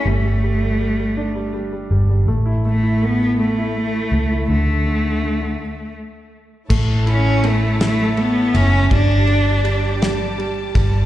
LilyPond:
<<
  \new Staff \with { instrumentName = "String section" } { \time 6/8 \key a \mixolydian \tempo 4. = 54 << { r2. | r2. | r2. | a''2.~ |
a''2. | } \\ { r2. | r2. | r2. | <e' cis''>2. |
<g' d''>2. | } >> }
  \new Staff \with { instrumentName = "Cello" } { \time 6/8 \key a \mixolydian a2 r4 | r8 a8 b8 a4. | a2 r4 | r8 cis'8 a8 a8 b8 cis'8 |
d'4. r4. | }
  \new Staff \with { instrumentName = "Upright piano" } { \clef bass \time 6/8 \key a \mixolydian g16 g16 g16 g16 g16 g16 d'16 g16 g16 g16 g16 g16 | a16 e'16 a16 e'16 a16 e'16 a16 e'16 a16 e'16 a16 e'16 | d16 d16 d16 d16 d16 d16 r4. | a8 e'8 a8 e'8 a8 e'8 |
g8 g8 g8 g8 g8 g8 | }
  \new Staff \with { instrumentName = "Fingered electric bass" } { \clef bass \time 6/8 \key a \mixolydian g,,2~ g,,8 g,,8 | a,,2~ a,,8 cis,8 | d,4. r4. | a,,2~ a,,8 fis,,8 |
g,,2~ g,,8 g,,8 | }
  \new DrumStaff \with { instrumentName = "Drums" } \drummode { \time 6/8 r4. r4. | r4. r4. | r4. r4. | <cymc bd>8 cymr8 cymr8 <cymr sn>8 cymr8 cymr8 |
<bd cymr>8 cymr8 cymr8 <cymr sn>8 cymr8 <bd cymr>8 | }
>>